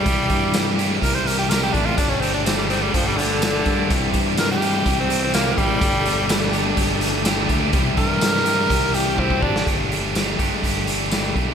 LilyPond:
<<
  \new Staff \with { instrumentName = "Tonewheel organ" } { \time 4/4 \key c \major \tempo 4 = 125 r1 | <d' g' a' d''>1 | <c' e' g' c''>1 | <a d' g' a'>1 |
<g c' e' g'>1 | r1 | }
  \new Staff \with { instrumentName = "Tenor saxophone" } { \time 4/4 \key c \major g4. r8 bes'16 c''16 bes'16 g'16 bes'16 g'16 d'16 f'16 | d'16 cis'16 c'16 d'16 c'16 g16 c'16 g16 f16 g16 d4.~ | d8 r8 bes'16 g'4 c'8 c'16 bes8 g8~ | g4. r2 r8 |
r8 bes'2 g'8 c'8 d'8 | r1 | }
  \new Staff \with { instrumentName = "Distorted electric guitar" } { \time 4/4 \key c \major <c e g e' g'>4. <c e g e' g'>4. <c e g e' g'>4 | <g a d' g'>4. <g a d' g'>4. <g a d' g'>4 | <c e g e' g'>4. <c e g e' g'>4. <c e g e' g'>4 | <g a d' g'>4. <g a d' g'>4. <g a d' g'>4 |
<c e g e' g'>4. <c e g e' g'>4. <c e g e' g'>4 | <g a d' g'>4. <g a d' g'>4. <g a d' g'>4 | }
  \new Staff \with { instrumentName = "Distorted electric guitar" } { \time 4/4 \key c \major <c e g e' g'>4. <c e g e' g'>4. <c e g e' g'>4 | <g a d' g'>4. <g a d' g'>4. <g a d' g'>4 | <c e g e' g'>4. <c e g e' g'>4. <c e g e' g'>4 | <g a d' g'>4. <g a d' g'>4. <g a d' g'>4 |
<c e g e' g'>4. <c e g e' g'>4. <c e g e' g'>4 | <g a d' g'>8 <a d' g'>8 <g a d' g'>8 <a d' g'>4 <a d' g'>8 <g a d' g'>4 | }
  \new Staff \with { instrumentName = "Fingered electric bass" } { \clef bass \time 4/4 \key c \major c,8 g,4. c,4. a,,8 | g,,2 g,,4. g,8 | c,8 g,4. c,4. a,,8 | g,,2 g,,4. d,8 |
c,8 g,4. c,4. aes,,8 | g,,4. g,,16 r16 g,,4. b,,8 | }
  \new DrumStaff \with { instrumentName = "Drums" } \drummode { \time 4/4 <hh bd>8 <hh bd>8 <hh sn tamb>8 hh8 <hh bd>8 hh8 <hh sn tamb>8 <hh bd>8 | <hh bd>8 hh8 <hh sn tamb>8 hh8 <hh bd>8 hh8 <hh sn tamb>8 <hh bd>8 | <hh bd>8 <hh bd>8 <hh sn tamb>8 hh8 <hh bd>8 hh8 <hh sn tamb>8 <hh bd>8 | <hh bd>8 hh8 <hh sn tamb>16 sn16 hh8 <hh bd>8 hh8 <hh sn tamb>8 <hh bd>8 |
<hh bd>8 <hh bd>8 <hh sn tamb>16 sn16 hh8 <hh bd>8 hh8 bd16 bd16 bd16 sn16 | <hh bd>8 hh8 <hh sn tamb>8 <hh bd>8 <hh bd>8 hh8 <hh sn tamb>8 <hh bd>8 | }
>>